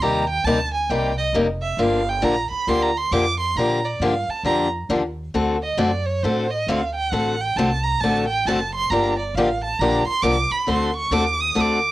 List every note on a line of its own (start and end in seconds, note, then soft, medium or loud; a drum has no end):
0.00 0.43 D#2 medium
0.00 0.23 C3 medium
0.00 0.23 G3 medium
0.00 0.23 A#3 medium
0.00 0.23 D#4 medium
0.00 0.23 G4 medium
0.00 0.29 A#5 medium
0.30 0.46 G5 loud
0.44 0.88 D2 medium
0.44 0.58 C3 medium
0.44 0.58 G3 medium
0.44 0.57 A#3 medium
0.44 0.58 D#4 medium
0.44 0.58 G4 medium
0.44 0.73 A5 loud
0.74 0.91 G#5 medium
0.89 1.32 C2 medium
0.89 1.11 C3 medium
0.89 1.12 G3 medium
0.89 1.12 A#3 medium
0.89 1.12 D#4 medium
0.89 1.12 G4 medium
0.89 1.17 G5 medium
1.17 1.28 D#5 loud
1.33 1.76 F1 medium
1.33 1.46 C3 medium
1.33 1.46 G3 medium
1.33 1.46 A#3 loud
1.33 1.46 D#4 medium
1.33 1.46 G4 medium
1.62 1.80 E5 loud
1.77 2.21 G1 medium
1.77 2.00 D3 medium
1.77 2.00 F3 medium
1.77 2.00 A#3 medium
1.77 2.01 D4 medium
1.77 2.01 G4 medium
1.77 2.10 F5 medium
2.09 2.25 G5 loud
2.22 2.49 A#1 medium
2.22 2.34 D3 medium
2.22 2.34 F3 medium
2.22 2.34 A#3 medium
2.22 2.34 D4 medium
2.22 2.34 G4 medium
2.22 2.50 A#5 loud
2.51 2.70 B5 loud
2.51 muted upright bass stroke soft
2.67 3.11 D2 medium
2.67 2.89 D3 medium
2.67 2.89 F3 medium
2.67 2.90 A#3 medium
2.67 2.90 D4 medium
2.67 2.90 G4 medium
2.67 2.84 C6 loud
2.82 2.99 A#5 medium
2.97 3.13 C6 medium
3.11 3.55 F2 medium
3.11 3.24 D3 medium
3.11 3.24 F3 medium
3.11 3.24 A#3 medium
3.11 3.24 D4 medium
3.11 3.24 G4 medium
3.11 3.39 D6 loud
3.40 3.58 C6 loud
3.56 3.99 A#2 medium
3.56 3.79 D3 medium
3.56 3.79 F3 medium
3.56 3.79 A#3 medium
3.56 3.79 D4 medium
3.56 3.79 G4 medium
3.56 3.86 A#5 medium
3.85 4.03 D5 medium
4.00 4.27 G2 medium
4.00 4.13 D3 medium
4.00 4.13 F3 medium
4.00 4.13 A#3 medium
4.00 4.13 D4 medium
4.00 4.13 G4 medium
4.00 4.31 F5 medium
4.28 4.45 A5 medium
4.28 muted upright bass stroke soft
4.43 4.88 F2 medium
4.43 4.67 D3 medium
4.43 4.67 F3 medium
4.43 4.67 A#3 medium
4.43 4.67 D4 medium
4.43 4.67 G4 medium
4.43 4.62 A#5 loud
4.89 5.33 D#2 medium
4.89 5.01 D3 medium
4.89 5.01 F3 medium
4.89 5.02 A#3 medium
4.89 5.02 D4 medium
4.89 5.02 G4 medium
5.34 5.77 D2 medium
5.34 5.56 D3 medium
5.34 5.56 A3 medium
5.34 5.56 C4 medium
5.34 5.56 F#4 medium
5.34 5.56 A4 medium
5.63 5.80 D#5 medium
5.77 6.22 F#2 medium
5.77 5.90 D3 medium
5.77 5.90 A3 medium
5.77 5.90 C4 medium
5.77 5.90 F#4 medium
5.77 5.90 A4 medium
5.77 6.07 D5 medium
6.06 6.24 C#5 medium
6.23 6.66 A2 medium
6.23 6.45 D3 medium
6.23 6.45 A3 medium
6.23 6.46 C4 medium
6.23 6.46 F#4 medium
6.23 6.46 A4 medium
6.23 6.52 C5 medium
6.50 6.70 D#5 loud
6.67 7.11 D2 medium
6.67 6.80 D3 medium
6.67 6.80 A3 medium
6.67 6.80 C4 medium
6.67 6.80 F#4 medium
6.67 6.81 A4 medium
6.67 6.94 F5 medium
6.95 7.13 G5 loud
7.11 7.56 A1 medium
7.11 7.34 D3 medium
7.11 7.34 A3 medium
7.11 7.34 C4 medium
7.11 7.35 F#4 medium
7.11 7.35 A4 medium
7.11 7.42 F#5 medium
7.41 7.58 G5 loud
7.56 8.00 C2 loud
7.56 7.69 D3 medium
7.56 7.69 A3 medium
7.56 7.69 C4 medium
7.56 7.69 F#4 medium
7.56 7.69 A4 loud
7.56 7.85 A5 medium
7.83 8.01 A#5 loud
8.00 8.44 A1 medium
8.00 8.24 D3 medium
8.00 8.24 A3 medium
8.00 8.24 C4 medium
8.00 8.24 A4 medium
8.00 8.27 A5 loud
8.04 8.24 F#4 medium
8.28 8.48 G5 loud
8.45 8.89 F#1 medium
8.45 8.58 D3 medium
8.45 8.59 A3 loud
8.45 8.59 C4 medium
8.45 8.58 F#4 medium
8.45 8.59 A4 medium
8.45 8.74 A5 medium
8.75 8.91 C6 loud
8.90 9.33 G1 medium
8.90 9.13 D3 medium
8.90 9.13 F3 medium
8.90 9.13 A#3 medium
8.90 9.13 D4 medium
8.90 9.13 G4 medium
8.90 9.18 A#5 loud
9.19 9.37 D5 medium
9.34 9.78 A1 medium
9.34 9.48 D3 medium
9.34 9.48 F3 medium
9.34 9.48 A#3 medium
9.34 9.48 D4 loud
9.34 9.48 G4 loud
9.34 9.63 F5 medium
9.64 9.81 A5 loud
9.79 10.05 A#1 medium
9.79 10.02 D3 medium
9.79 10.02 F3 medium
9.79 10.02 A#3 medium
9.79 10.02 D4 medium
9.79 10.02 G4 medium
9.79 10.07 A#5 loud
10.07 10.24 C6 loud
10.07 muted upright bass stroke soft
10.22 10.49 C2 medium
10.22 10.35 D3 medium
10.22 10.35 F3 medium
10.22 10.35 A#3 loud
10.22 10.36 D4 loud
10.22 10.35 G4 medium
10.22 10.53 D6 loud
10.51 10.70 B5 loud
10.51 muted upright bass stroke soft
10.67 11.10 D2 medium
10.67 10.89 D3 medium
10.67 10.90 A3 medium
10.67 10.90 C4 medium
10.67 10.90 F#4 medium
10.67 10.90 A4 medium
10.67 10.96 C6 medium
10.96 11.15 C#6 loud
11.11 11.55 D#2 loud
11.11 11.24 D3 medium
11.11 11.24 A3 medium
11.11 11.24 C4 medium
11.11 11.24 F#4 loud
11.11 11.24 A4 loud
11.11 11.42 D6 loud
11.41 11.61 D#6 loud
11.55 11.92 D2 medium
11.55 11.78 D3 medium
11.55 11.78 A3 medium
11.55 11.78 C4 medium
11.55 11.78 F#4 medium
11.55 11.78 A4 medium
11.60 11.92 D6 loud